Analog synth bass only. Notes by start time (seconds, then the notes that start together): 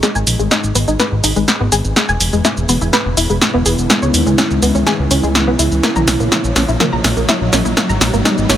0.15 G#1
0.27 A#1
0.39 G#1
0.64 G#1
0.75 G#1
0.88 G#1
1.12 G#1
1.24 G#1
1.36 G#1
1.60 G#1
1.72 G#1
1.85 G#1
2.09 E1
2.20 E1
2.33 E1
2.57 E1
2.69 E1
2.81 E1
3.06 E1
3.17 E1
3.30 E1
3.54 E1
3.66 E1
3.78 E1
4.02 C#2
4.14 D#2
4.27 C#2
4.51 C#2
4.62 C#2
4.75 C#2
4.99 C#2
5.11 C#2
5.23 C#2
5.48 B1
5.59 C#2
5.72 C#2
5.96 A#1
6.08 B1
6.20 A#1
6.44 A#1
6.56 A#1
6.68 A#1
6.93 A#1
7.04 A#1
7.17 A#1
7.41 A#1
7.53 A#1
7.65 A#1
7.89 G#1
8.01 A#1
8.14 G#1
8.38 G#1
8.50 G#1